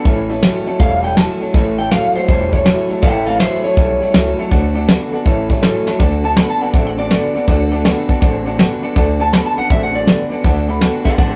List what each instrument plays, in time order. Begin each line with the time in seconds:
0.04 upright bass A1, steel-string acoustic guitar A2 E3 A3 C#4 E4 A4, clean electric guitar A2 E3, upright piano C#5 E5 A5, kick, open hi-hat
0.29 clean electric guitar A2 E3, steel-string acoustic guitar A3 C#4 E4 A4, upright piano C#5 E5 A5
0.42 steel-string acoustic guitar A2 E3 A3 C#4 E4 A4, clean electric guitar A2 F#3, upright piano C#5 E5 A5, snare, open hi-hat
0.66 clean electric guitar A2 F#3, steel-string acoustic guitar A3 C#4 E4 A4, upright piano C#5 E5 A5, muted upright bass stroke
0.79 upright bass E1, clean electric guitar A2 G3 F5, steel-string acoustic guitar A3 C#4 E4 A4, upright piano C#5 E5 A5, kick, open hi-hat
1.03 clean electric guitar A2 G3 G5, steel-string acoustic guitar A3 C#4 E4 A4, upright piano C#5 E5 A5
1.17 steel-string acoustic guitar A2 E3 A3 C#4 E4 A4, clean electric guitar A2 F#3 A5, upright piano C#5 E5 A5, snare, open hi-hat
1.40 clean electric guitar A2 F#3, steel-string acoustic guitar A3 C#4 E4 A4, upright piano C#5 E5 A5, muted upright bass stroke
1.54 upright bass A1, steel-string acoustic guitar A2 E3 A3 C#4 E4 A4, clean electric guitar A2 E3, upright piano C#5 E5 A5, kick, open hi-hat
1.78 clean electric guitar A2 E3 G5, steel-string acoustic guitar A3 C#4 E4 A4, upright piano C#5 E5 A5
1.91 clean electric guitar A2 F#3 F5, steel-string acoustic guitar A2 E3 A3 C#4 E4 A4, upright piano C#5 A5, snare, open hi-hat
2.15 clean electric guitar A2 F#3 C5, steel-string acoustic guitar A3 C#4 E4 A4, upright piano C#5 E5 F#5, muted upright bass stroke
2.28 upright bass E1, clean electric guitar A2 G3 C5, steel-string acoustic guitar A3 C#4 E4 A4, upright piano C#5 E5 A5, kick, open hi-hat
2.52 clean electric guitar A2 G3 C#5, steel-string acoustic guitar A3 C#4 E4 A4, upright piano C#5 E5 A5, kick
2.65 clean electric guitar A2 F#3, steel-string acoustic guitar A2 E3 A3 C#4 E4 A4, upright piano C#5 E5 A5, snare, open hi-hat
2.89 clean electric guitar A2 F#3, steel-string acoustic guitar A3 C#4 E4 A4, upright piano C#5 E5 A5, muted upright bass stroke
3.02 upright bass A1, steel-string acoustic guitar A2 E3 A3 C#4 E4 A4, clean electric guitar A2 E3 E5 G5, upright piano C#5 E5 A5, kick, open hi-hat
3.26 clean electric guitar A2 E3 A4 F5, steel-string acoustic guitar A3 C#4 E4 A4, upright piano C#5 E5 A5
3.39 steel-string acoustic guitar A2 E3 A3 C#4 E4 A4, clean electric guitar A2 F#3 E4 C5, upright piano E5 A5, snare, open hi-hat
3.63 clean electric guitar A2 F#3 C#5, steel-string acoustic guitar A3 C#4 E4 A4, upright piano C#5 E5 A5, muted upright bass stroke
3.76 upright bass B1, clean electric guitar A2 G3, steel-string acoustic guitar A3 C#4 E4 A4, upright piano C#5 E5 A5, kick, open hi-hat
4.00 clean electric guitar A2 G3, steel-string acoustic guitar A3 C#4 E4 A4, upright piano C#5 E5 A5, muted upright bass stroke
4.13 upright bass C#2, steel-string acoustic guitar A2 E3 A3 C#4 E4 A4, clean electric guitar A2 F#3, upright piano C#5 E5 A5, snare
4.38 clean electric guitar A2 F#3, steel-string acoustic guitar A3 C#4 E4 A4, upright piano C#5 E5 A5, muted upright bass stroke
4.50 upright bass D2, clean electric guitar D3 A3, steel-string acoustic guitar D3 A3 D4 F#4 A4, upright piano D5 F#5 A5, kick, open hi-hat
4.74 clean electric guitar D3 A3, steel-string acoustic guitar D4 F#4 A4, upright piano D5 F#5 A5
4.88 steel-string acoustic guitar D3 A3 D4 F#4 A4, clean electric guitar D3 B3, upright piano D5, snare, open hi-hat
5.12 clean electric guitar D3 B3, steel-string acoustic guitar D4 F#4 A4, upright piano D5 F#5 A5, muted upright bass stroke
5.25 upright bass A1, clean electric guitar A2 E3, steel-string acoustic guitar A3 C#4 E4 A4, upright piano C#5 E5 A5, kick, open hi-hat
5.49 clean electric guitar A2 G3, steel-string acoustic guitar A3 C#4 E4 A4, upright piano C#5 E5 A5, kick
5.61 steel-string acoustic guitar A2 E3 A3 C#4 E4 A4, clean electric guitar A2 F#3, upright piano C#5 E5 A5, snare, open hi-hat
5.85 clean electric guitar A2 F#3, steel-string acoustic guitar C#4 E4 A4, upright piano C#5 E5 A5, muted upright bass stroke, snare
5.90 steel-string acoustic guitar A3
5.99 upright bass D2, steel-string acoustic guitar D3 A3 D4 F#4 A4, clean electric guitar D3 A3, upright piano D5 F#5 A5, kick, open hi-hat
6.24 clean electric guitar D3 A3 A5, steel-string acoustic guitar D4 F#4 A4, upright piano D5 F#5 A5
6.36 steel-string acoustic guitar D3 A3 D4 F#4 A4, clean electric guitar D3 B3 B5, upright piano D5 F#5 A5, snare, open hi-hat
6.50 clean electric guitar A5
6.60 clean electric guitar D3 B3 F#5, steel-string acoustic guitar D4 F#4 A4, upright piano D5 F#5 A5, muted upright bass stroke
6.73 upright bass A1, clean electric guitar D3 C4 E5, steel-string acoustic guitar A3 D4 F#4 A4, upright piano D5 F#5 A5, kick, open hi-hat
6.87 clean electric guitar F#5
6.98 clean electric guitar D3 C4 D5, steel-string acoustic guitar D4 F#4 A4, upright piano D5 F#5 A5
7.10 steel-string acoustic guitar D3 A3 D4 F#4 A4, clean electric guitar D3 B3, upright piano D5 F#5 A5, snare
7.35 clean electric guitar D3 B3, steel-string acoustic guitar D4 F#4 A4, upright piano D5 F#5 A5, muted upright bass stroke
7.47 upright bass D2, steel-string acoustic guitar D3 A3 D4 F#4 A4, clean electric guitar D3 A3, upright piano D5 F#5 A5, kick, open hi-hat
7.71 clean electric guitar D3 A3, steel-string acoustic guitar D4 F#4 A4, upright piano D5 F#5 A5
7.84 clean electric guitar D3 B3, steel-string acoustic guitar D3 A3 D4 F#4 A4, upright piano D5 F#5 A5, snare, open hi-hat
8.08 clean electric guitar D3 B3, steel-string acoustic guitar D4 F#4 A4, upright piano D5 F#5 A5, kick
8.20 upright bass A1, clean electric guitar D3 C4, steel-string acoustic guitar A3 D4 F#4, upright piano D5 F#5 A5, kick, open hi-hat
8.24 steel-string acoustic guitar A4
8.45 clean electric guitar D3 C4, steel-string acoustic guitar D4 F#4 A4, upright piano D5 F#5 A5
8.58 steel-string acoustic guitar D3 A3 D4 F#4 A4, clean electric guitar D3 B3, upright piano D5 F#5 A5, snare, open hi-hat
8.82 clean electric guitar D3 B3, steel-string acoustic guitar D4 F#4 A4, upright piano D5 F#5 A5, muted upright bass stroke
8.96 upright bass D2, steel-string acoustic guitar D3 A3 D4 F#4 A4, clean electric guitar D3 A3, upright piano D5 F#5 A5, kick, open hi-hat
9.19 clean electric guitar D3 A3 A5, steel-string acoustic guitar D4 F#4 A4, upright piano D5 F#5 A5
9.33 steel-string acoustic guitar D3 A3 D4 F#4 A4, clean electric guitar D3 B3 B5, snare, open hi-hat
9.46 clean electric guitar A5
9.56 clean electric guitar D3 B3 F#5, steel-string acoustic guitar D4 F#4 A4, upright piano D5 F#5 A5, muted upright bass stroke
9.70 upright bass A1, clean electric guitar D3 C4 E5, steel-string acoustic guitar A3 D4 F#4 A4, upright piano D5 F#5 A5, kick, open hi-hat
9.83 clean electric guitar F#5
9.94 clean electric guitar D3 C4 D5, steel-string acoustic guitar D4 F#4 A4, upright piano D5 F#5 A5
10.06 clean electric guitar D3 B3, steel-string acoustic guitar D3 A3 D4 F#4 A4, upright piano D5 F#5 A5, snare
10.31 clean electric guitar D3 B3, steel-string acoustic guitar D4 F#4 A4, upright piano D5 F#5 A5, muted upright bass stroke
10.44 upright bass D2, steel-string acoustic guitar D3 A3 D4 F#4 A4, clean electric guitar D3 A3, upright piano D5 F#5 A5, kick, open hi-hat
10.68 clean electric guitar D3 A3, steel-string acoustic guitar D4 F#4 A4, upright piano D5 F#5 B5
10.81 steel-string acoustic guitar D3 A3 D4 F#4 A4, clean electric guitar D3 B3, upright piano D5 F#5 A5, snare, open hi-hat
11.04 clean electric guitar D3 B3 A4 F#5, steel-string acoustic guitar D4 F#4 A4, upright piano D5 F#5 A5, kick
11.17 upright bass A1, clean electric guitar D3 C4 A4 F#5, steel-string acoustic guitar A3 D4 F#4 A4, upright piano D5 F#5 A5, kick, open hi-hat